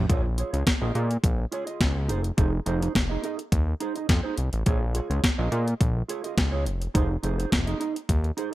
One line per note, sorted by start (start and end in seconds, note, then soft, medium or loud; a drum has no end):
0.09 0.43 A#1 medium
0.09 0.27 F4 medium
0.09 0.24 G#4 loud
0.09 0.23 C#5 medium
0.09 kick loud
0.09 closed hi-hat medium
0.24 muted clean electric guitar stroke soft
0.38 0.52 F4 medium
0.38 0.52 G#4 medium
0.38 0.52 C#5 medium
0.38 closed hi-hat medium
0.53 0.64 C#2 medium
0.53 0.65 F4 soft
0.53 0.66 G#4 soft
0.53 0.65 C#5 medium
0.53 closed hi-hat medium
0.67 kick loud
0.67 snare loud
0.67 closed hi-hat medium
0.81 0.92 A#1 medium
0.81 0.93 F4 medium
0.81 0.94 G#4 medium
0.81 0.95 D#5 medium
0.94 1.17 A#2 medium
0.94 1.09 F4 medium
0.94 1.09 G#4 medium
0.94 1.09 D#5 medium
0.94 closed hi-hat medium
1.10 muted clean electric guitar stroke soft
1.10 closed hi-hat soft
1.23 1.46 A#1 medium
1.23 muted clean electric guitar stroke soft
1.23 kick loud
1.23 closed hi-hat medium
1.39 muted clean electric guitar stroke medium
1.52 1.67 F4 medium
1.52 1.66 G#4 medium
1.52 1.66 C#5 medium
1.52 closed hi-hat medium
1.67 1.80 F4 soft
1.67 1.80 G#4 medium
1.67 1.80 D#5 medium
1.67 closed hi-hat soft
1.81 2.11 C#2 medium
1.81 kick loud
1.81 snare loud
1.81 closed hi-hat medium
1.95 muted clean electric guitar stroke soft
2.08 2.31 F1 medium
2.08 2.27 D#4 medium
2.08 2.24 G#4 medium
2.08 2.23 C5 medium
2.08 closed hi-hat medium
2.24 muted clean electric guitar stroke soft
2.24 closed hi-hat medium
2.37 2.60 F1 loud
2.37 2.55 D#4 medium
2.37 2.53 G#4 medium
2.37 2.52 C5 medium
2.37 kick loud
2.37 closed hi-hat medium
2.53 muted clean electric guitar stroke soft
2.66 2.89 F1 loud
2.66 2.80 D#4 medium
2.66 2.80 G#4 medium
2.66 2.79 C5 medium
2.66 closed hi-hat medium
2.81 2.93 D#4 medium
2.81 2.94 G#4 medium
2.81 2.94 C5 medium
2.81 closed hi-hat medium
2.95 3.17 F1 medium
2.95 muted clean electric guitar stroke soft
2.95 kick loud
2.95 snare loud
2.95 closed hi-hat medium
3.09 3.22 D#4 medium
3.09 3.23 G#4 medium
3.09 3.24 D#5 medium
3.23 3.38 D#4 medium
3.23 3.38 G#4 medium
3.23 3.38 D#5 medium
3.23 closed hi-hat medium
3.39 muted clean electric guitar stroke soft
3.39 closed hi-hat soft
3.52 3.74 D#2 medium
3.52 muted clean electric guitar stroke soft
3.52 kick loud
3.52 closed hi-hat loud
3.67 muted clean electric guitar stroke soft
3.80 3.96 D#4 medium
3.80 3.95 G#4 medium
3.80 3.95 C5 medium
3.80 closed hi-hat medium
3.95 4.07 D#4 soft
3.95 4.08 G#4 medium
3.95 4.08 D#5 soft
3.95 closed hi-hat soft
4.09 4.21 F2 medium
4.09 muted clean electric guitar stroke soft
4.09 kick loud
4.09 snare loud
4.09 closed hi-hat medium
4.23 4.36 D#4 medium
4.23 4.37 G#4 medium
4.23 4.38 C5 medium
4.37 4.50 C2 medium
4.37 muted clean electric guitar stroke soft
4.37 closed hi-hat medium
4.52 4.64 A1 medium
4.52 muted clean electric guitar stroke soft
4.52 closed hi-hat soft
4.66 5.00 A#1 loud
4.66 4.84 F4 medium
4.66 4.81 G#4 medium
4.66 4.80 C#5 medium
4.66 kick loud
4.66 closed hi-hat medium
4.81 muted clean electric guitar stroke medium
4.94 5.09 F4 medium
4.94 5.09 G#4 medium
4.94 5.09 C#5 medium
4.94 closed hi-hat medium
5.10 5.20 C#2 medium
5.10 5.22 F4 soft
5.10 5.23 G#4 medium
5.10 5.23 C#5 medium
5.10 closed hi-hat soft
5.24 muted clean electric guitar stroke soft
5.24 kick loud
5.24 snare loud
5.24 closed hi-hat medium
5.38 5.49 A#1 loud
5.38 5.51 F4 medium
5.38 5.52 G#4 medium
5.38 5.52 D#5 medium
5.52 5.74 A#2 loud
5.52 5.66 F4 medium
5.52 5.67 G#4 medium
5.52 5.66 D#5 medium
5.52 closed hi-hat medium
5.67 muted clean electric guitar stroke soft
5.67 closed hi-hat medium
5.80 6.03 A#1 medium
5.80 muted clean electric guitar stroke soft
5.80 kick loud
5.80 closed hi-hat medium
5.95 muted clean electric guitar stroke soft
6.08 6.25 F4 medium
6.08 6.24 G#4 medium
6.08 6.23 C#5 medium
6.08 closed hi-hat medium
6.24 6.36 F4 medium
6.24 6.37 G#4 medium
6.24 6.37 D#5 medium
6.24 closed hi-hat soft
6.37 6.68 C#2 medium
6.37 muted clean electric guitar stroke soft
6.37 kick loud
6.37 snare loud
6.37 closed hi-hat medium
6.52 6.65 F4 medium
6.52 6.65 G#4 medium
6.52 6.67 C#5 medium
6.66 6.88 F1 medium
6.66 muted clean electric guitar stroke soft
6.66 closed hi-hat medium
6.81 muted clean electric guitar stroke soft
6.81 closed hi-hat soft
6.94 7.17 F1 loud
6.94 7.12 D#4 medium
6.94 7.10 G#4 medium
6.94 7.08 C5 loud
6.94 kick loud
6.94 closed hi-hat medium
7.10 muted clean electric guitar stroke soft
7.23 7.46 F1 medium
7.23 7.37 D#4 medium
7.23 7.38 G#4 medium
7.23 7.37 C5 medium
7.23 closed hi-hat medium
7.38 7.50 D#4 soft
7.38 7.51 G#4 medium
7.38 7.51 C5 medium
7.38 closed hi-hat soft
7.52 7.74 F1 medium
7.52 muted clean electric guitar stroke soft
7.52 kick loud
7.52 snare loud
7.52 closed hi-hat medium
7.66 7.79 D#4 medium
7.66 7.80 G#4 medium
7.66 7.81 D#5 medium
7.66 closed hi-hat soft
7.80 7.95 D#4 medium
7.80 7.95 G#4 medium
7.80 7.95 D#5 medium
7.80 closed hi-hat medium
7.95 muted clean electric guitar stroke soft
7.95 closed hi-hat medium
8.09 8.31 D#2 medium
8.09 muted clean electric guitar stroke soft
8.09 kick loud
8.09 closed hi-hat medium
8.24 muted clean electric guitar stroke medium
8.24 closed hi-hat soft
8.37 8.53 D#4 medium
8.37 8.52 G#4 medium
8.37 8.52 C5 medium
8.37 closed hi-hat medium